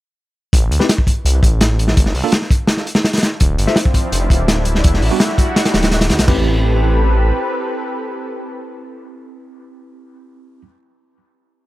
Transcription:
0.53 A1, kick, closed hi-hat
0.71 D2, closed hi-hat
0.80 C4 E4 G4 B4, snare
0.89 snare, closed hi-hat
0.98 kick
1.07 kick, closed hi-hat
1.25 C2, closed hi-hat
1.43 A1, kick, closed hi-hat
1.61 snare, closed hi-hat
1.79 closed hi-hat
1.88 snare
1.97 G1, kick, closed hi-hat
2.06 snare
2.15 C2, open hi-hat
2.24 A#3 D4 F4 A4
2.32 snare, closed hi-hat
2.42 snare
2.51 kick, closed hi-hat
2.67 snare, closed hi-hat
2.77 snare
2.87 closed hi-hat
2.95 snare
3.04 snare, closed hi-hat
3.13 snare, closed hi-hat
3.17 snare, closed hi-hat
3.23 snare, closed hi-hat
3.40 D1 F3 C4 D4 E4, kick, closed hi-hat
3.58 G1, closed hi-hat
3.67 F4 A4 C5 E5, snare
3.76 snare, closed hi-hat
3.85 kick
3.94 kick, closed hi-hat
4.12 F1, closed hi-hat
4.30 D1, kick, closed hi-hat
4.48 snare, closed hi-hat
4.65 closed hi-hat
4.75 snare
4.84 E1 G3 F#4, kick, closed hi-hat
4.94 snare
5.02 A1, open hi-hat
5.11 G3 B3 D4 F#4
5.20 snare, closed hi-hat
5.28 snare
5.38 kick, closed hi-hat
5.56 snare, closed hi-hat
5.65 snare, closed hi-hat
5.74 D1, snare, closed hi-hat
5.83 snare, closed hi-hat
5.91 snare, closed hi-hat
6.01 snare, closed hi-hat
6.09 E2, snare, closed hi-hat
6.19 B1, snare, closed hi-hat
6.28 A1 C4 E4 G4 A4 B4, kick, floor tom, crash

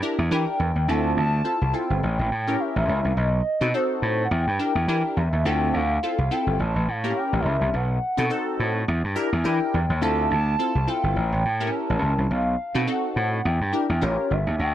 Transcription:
0.02 D4 E4 G4 A#4
0.18 E2
0.31 E3 D4 E4 G4 A#4 G5
0.60 E2
0.76 D#2
0.88 D2 C4 E4 F4 A4 A5
1.17 D2 A5
1.44 C4 E4 F4 A4
1.61 C2
1.73 C4 E4 F4 A4 G5
1.90 G1
2.03 A1 G5
2.19 A1
2.31 A2
2.47 C#4 E4 G4 A#4
2.60 E5
2.76 A1
2.89 C#2
3.05 C2
3.12 F5
3.17 B1 D#5
3.61 B2 C4 D#4 F#4 A4
3.74 C4 D#4 F#4 A4 C5
4.02 A2
4.25 F#5
4.31 E2 G5
4.47 G2
4.59 D4 E4 G4 A#4
4.75 E2
4.88 E3 D4 E4 G4 A#4
5.16 E2 E5
5.33 D#2
5.45 D2 C4 E4 F4 A4 G5
5.74 D2 F5
6.03 C4 E4 F4 A4 F5
6.18 C2
6.31 C4 E4 F4 A4 G5
6.47 G1
6.59 A1 A5
6.76 A1
6.88 A2 F5
7.04 A#3 E4 G4 A#4
7.10 C#4
7.17 G5
7.33 A1
7.40 D#5
7.45 C#2 E5
7.61 C2
7.74 B1 F#5
8.17 B2 C4 D#4 F#4 A4
8.30 C4 D#4 F#4 A4
8.60 A2
8.88 E2
9.04 G2
9.16 D4 E4 G4 A#4
9.33 E2
9.44 E3 D4 E4 G4 A#4 G5
9.74 E2
9.90 D#2
10.01 D2 C4 E4 F4 A4 A5
10.31 D2 A5
10.59 C4 E4 F4 A4
10.75 C2
10.87 C4 E4 F4 A4 G5
11.04 G1
11.16 A1 G5
11.32 A1
11.45 A2
11.60 A#3 E4 G4 A#4
11.67 C#4 G#5
11.75 A5
11.90 A1
12.02 C#2
12.18 C2
12.31 B1 F5
12.75 B2 C4 D#4 F#4 A4
12.87 C4 D#4 F#4 A4 F#5
13.16 A2
13.45 E2 G5
13.61 G2
13.73 D4 E4 G4 A#4
13.89 E2
14.01 A1 C#4 F4 G4 A#4 C#5
14.31 G1 E5
14.47 D#2
14.59 D2 G5

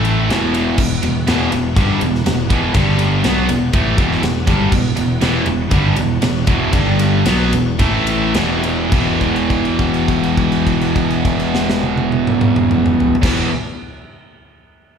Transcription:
Already playing: A1 A2 E3 A3 E4 B4
0.05 ride
0.27 E1 E2 B2 E3 B3 F#4, ride
0.31 snare
0.54 ride
0.77 E1 E2 B2 E3 B3 F#4, kick, crash
1.03 E1 E2 B2, ride
1.27 E1 E2 B2 E3, snare, ride
1.52 E1 E2 B2, ride
1.76 G1 G2 D3 G3, kick, ride
2.01 E1 E2 B2, ride
2.15 snare
2.26 E1 E2 B2, snare, ride
2.50 E1 E2 B2 E3, kick, ride
2.74 G1 G2 D3 G3 D4 A4, kick, ride
2.99 ride
3.24 B1 B2 E3 F#3 B3 F#4, snare, ride
3.49 E1 E2 B2, ride
3.73 A1 A2 E3 A3, kick, ride
3.98 E1 E2 B2 E3, kick, ride
4.12 snare
4.23 E1 E2 B2, snare, ride
4.47 G1 G2 D3 G3, kick, ride
4.72 E1 E2 B2, kick, crash
4.97 E1 E2 B2, ride
5.21 E1 E2 B2 E3, snare, ride
5.46 E1 E2 B2, ride
5.71 G1 G2 D3 G3, kick, ride
5.96 E1 E2 B2, ride
6.22 E1 E2 B2, snare, ride
6.47 E1 E2 B2 E3, kick, ride
6.73 G1 G2 D3 G3 D4 A4, kick, ride
6.99 snare, ride
7.25 B1 B2 E3 F#3 B3 F#4, snare, ride
7.52 E1 E2 B2, ride
7.79 A1 A2 E3 A3 E4 B4, kick, ride
8.07 ride
8.34 E1 E2 B2 E3 B3 F#4, snare, ride
8.63 ride
8.91 E1 E2 B2 E3 B3 F#4, kick, crash
8.95 E3
9.21 kick, crash
9.36 crash
9.50 kick, crash
9.65 crash
9.79 kick, crash
9.94 crash
10.08 kick, crash
10.23 crash
10.37 kick, crash
10.52 crash
10.67 kick, crash
10.81 crash
10.96 kick, crash
11.10 crash
11.25 kick, crash
11.40 crash
11.55 snare
11.70 snare
11.83 high tom
11.97 high tom
12.12 high tom
12.27 mid tom
12.41 mid tom
12.56 mid tom
12.71 mid tom
12.86 mid tom
13.00 floor tom
13.15 floor tom
13.22 E1 E2 B2 E3 B3 F#4, kick, snare, crash

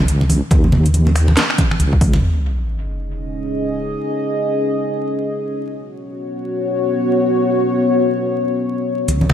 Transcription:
Already playing: C#2
0.08 closed hi-hat
0.21 muted conga
0.30 open hi-hat, high conga
0.51 D#2, kick, closed hi-hat, muted conga
0.64 high conga
0.72 muted conga, low conga
0.86 closed hi-hat
0.94 closed hi-hat, high conga
1.07 muted conga
1.16 finger snap, open hi-hat
1.28 muted conga, high conga
1.37 snare, closed hi-hat
1.50 finger snap
1.58 kick, closed hi-hat, muted conga
1.71 finger snap, high conga
1.80 C#2, closed hi-hat, muted conga
1.93 kick
2.01 kick, open hi-hat, high conga
2.13 muted conga
2.22 C#4 G#4 D#5, sub drop
5.65 B3 F#4 C#5
9.08 C#2 C#4 G#4 D#5, closed hi-hat, muted conga
9.21 high conga
9.29 finger snap, muted conga, low conga

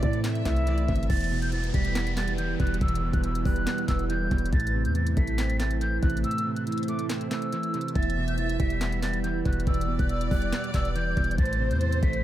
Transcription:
Already playing: A2 C3 E3 A3 E4 C5 D5, swell
0.03 A2 A3 D5, kick, closed hi-hat
0.13 closed hi-hat
0.24 C4 E5, snare, clap, closed hi-hat
0.35 closed hi-hat
0.45 C2 A3 E5, kick, snare, clap, closed hi-hat
0.56 closed hi-hat
0.67 E3 D5, closed hi-hat
0.78 closed hi-hat
0.88 G1 C3 E5, kick, closed hi-hat
0.96 closed hi-hat
1.03 closed hi-hat
1.09 E1 E2 G3 E4 B4 A6, kick, closed hi-hat, crash, downlifter
1.17 closed hi-hat
1.21 closed hi-hat
1.24 closed hi-hat
1.31 B2
1.42 G6, closed hi-hat
1.52 E3 A6, closed hi-hat
1.64 closed hi-hat
1.74 E1 G3 B6, kick, closed hi-hat
1.85 closed hi-hat
1.95 B3, snare, clap, closed hi-hat
2.07 closed hi-hat
2.17 G3 A6, snare, clap, closed hi-hat
2.28 closed hi-hat
2.38 E3 G6, closed hi-hat
2.60 E1 B2 F#6, kick, closed hi-hat
2.67 closed hi-hat
2.74 closed hi-hat
2.81 E1 E2 E6, kick, closed hi-hat
2.88 closed hi-hat
2.95 closed hi-hat
3.02 B2
3.13 E1 F#6, kick, closed hi-hat
3.24 E3 E6, closed hi-hat
3.35 closed hi-hat
3.45 E1 G3 F#6, kick, open hi-hat
3.56 closed hi-hat
3.67 B3, snare, clap, closed hi-hat
3.78 closed hi-hat
3.88 E1 G3 E6, kick, snare, clap, closed hi-hat
3.99 closed hi-hat
4.09 E3 G6, closed hi-hat
4.31 E1 B2, kick, closed hi-hat
4.38 closed hi-hat
4.46 closed hi-hat
4.53 A1 A2 A3 C5 A6, kick, closed hi-hat
4.60 closed hi-hat
4.67 closed hi-hat
4.74 C3
4.85 E2 G6, closed hi-hat
4.95 E3 A6, closed hi-hat
5.07 closed hi-hat
5.17 A1 A3 B6, kick, closed hi-hat
5.27 closed hi-hat
5.38 C4, snare, clap, closed hi-hat
5.50 closed hi-hat
5.60 A3 A6, snare, clap, closed hi-hat
5.71 closed hi-hat
5.81 E3 G6, closed hi-hat
6.02 A1 C3 F#6, kick, closed hi-hat
6.10 closed hi-hat
6.17 closed hi-hat
6.24 A2 E6, closed hi-hat
6.31 closed hi-hat
6.38 closed hi-hat
6.45 C3
6.56 F#6, closed hi-hat
6.67 E3 E6, closed hi-hat
6.72 closed hi-hat
6.78 closed hi-hat
6.83 closed hi-hat
6.88 A3 D6, closed hi-hat
6.99 closed hi-hat
7.10 C4, snare, clap, closed hi-hat
7.21 closed hi-hat
7.31 A3 E6, snare, clap, closed hi-hat
7.42 closed hi-hat
7.53 E3, closed hi-hat
7.63 closed hi-hat
7.74 C3, closed hi-hat
7.81 closed hi-hat
7.88 closed hi-hat
7.95 E1 E2 G3 B4 E5 A6, kick, closed hi-hat
8.03 closed hi-hat
8.10 closed hi-hat
8.17 B2
8.28 G6, closed hi-hat
8.38 E3 A6, closed hi-hat
8.49 closed hi-hat
8.60 E1 G3 B6, kick, closed hi-hat
8.70 closed hi-hat
8.81 B3, snare, clap, closed hi-hat
8.92 closed hi-hat
9.03 G3 A6, snare, clap, closed hi-hat
9.13 closed hi-hat
9.24 E3 G6, closed hi-hat
9.45 E1 B2 F#6, kick, closed hi-hat
9.53 closed hi-hat
9.60 closed hi-hat
9.67 E1 E2 D5 E6, kick, closed hi-hat
9.74 closed hi-hat
9.81 closed hi-hat
9.88 B2
9.99 E1 F#6, kick, closed hi-hat
10.09 E3 E6, closed hi-hat
10.21 closed hi-hat
10.30 E1 G3 F#6, kick, open hi-hat
10.42 closed hi-hat
10.53 B3, snare, clap, closed hi-hat
10.64 closed hi-hat
10.74 E1 G3 E6, kick, snare, clap, closed hi-hat
10.85 closed hi-hat
10.95 E3 G6, closed hi-hat
11.17 E1 B2, kick, closed hi-hat
11.24 closed hi-hat
11.31 closed hi-hat
11.38 A1 A2 A3 E4 C5 A6, kick, closed hi-hat
11.46 closed hi-hat
11.53 closed hi-hat
11.60 C3
11.70 E2 G6, closed hi-hat
11.81 E3 A6, closed hi-hat
11.92 closed hi-hat
12.02 A1 A3 B6, kick, closed hi-hat
12.13 closed hi-hat

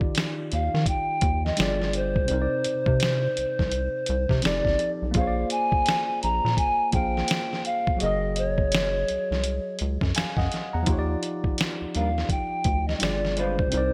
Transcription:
Already playing: D#3 D#4 F4 G4 D5
0.01 kick
0.15 snare, closed hi-hat
0.52 D#2 F5, closed hi-hat
0.74 D#3, snare
0.86 G5, kick, closed hi-hat
1.21 D#2, kick, closed hi-hat
1.46 D#5, snare
1.57 G1 G3 D4 F4 G#4 D5, snare, closed hi-hat
1.62 D5
1.82 snare
1.93 C5, closed hi-hat
2.16 kick
2.25 C3 C4, closed hi-hat
2.30 C2 D#4 A#4
2.35 C5
2.42 D5
2.64 C3, closed hi-hat
2.86 C3, kick
3.00 snare, closed hi-hat
3.37 C2, closed hi-hat
3.59 C2, kick, snare
3.72 closed hi-hat
4.06 C2, closed hi-hat
4.29 C3, kick, snare
4.42 F1 F3 C4 D#4 G4 A4 D5, snare, closed hi-hat
4.47 D5
4.65 G1, kick, snare
4.79 closed hi-hat
5.02 B1
5.11 A#3 F4, kick, closed hi-hat
5.16 A#1 G#4 C5 F5
5.21 C#5
5.27 D5
5.50 G#5, closed hi-hat
5.72 kick
5.86 snare, closed hi-hat
6.22 A#1 A#5, closed hi-hat
6.45 A#2, snare
6.57 G#5, kick, closed hi-hat
6.92 A#1 A#3 F4 G#4 C5 G5, kick, closed hi-hat
6.96 F5
7.17 snare
7.28 snare, closed hi-hat
7.53 snare
7.65 F5, closed hi-hat
7.87 kick
7.96 F#3 F#4, closed hi-hat
8.01 F#1 G#4 A#4 D#5
8.06 D#5
8.36 C#5, closed hi-hat
8.58 kick
8.72 snare, closed hi-hat
9.08 C2, closed hi-hat
9.31 C2, snare
9.44 closed hi-hat
9.79 C#2, closed hi-hat
10.01 F#2, kick, snare
10.15 F#2 F5 G#5, snare, closed hi-hat
10.37 F#2 D#5 F#5, kick, snare
10.52 snare, closed hi-hat
10.73 E2 F#5 A#5
10.82 F3 D#4
10.86 D#2 F4 G4, kick, closed hi-hat
10.92 C#5
10.99 D5
11.23 closed hi-hat
11.44 kick
11.58 snare, closed hi-hat
11.82 D#2
11.95 D#2 G3 D4 F4 A#4 F5, closed hi-hat
12.18 snare
12.29 G5, kick, closed hi-hat
12.64 D2, kick, closed hi-hat
12.88 D#5, snare
12.96 G3 D4 D#5, closed hi-hat
13.01 G1 F4 G#4 D5, muted hollow-body jazz guitar stroke, snare
13.25 snare
13.37 G#3 D4 F4 B4 C5, closed hi-hat
13.59 kick
13.68 C3 C4
13.72 C2 D#4 A#4, closed hi-hat
13.77 D5

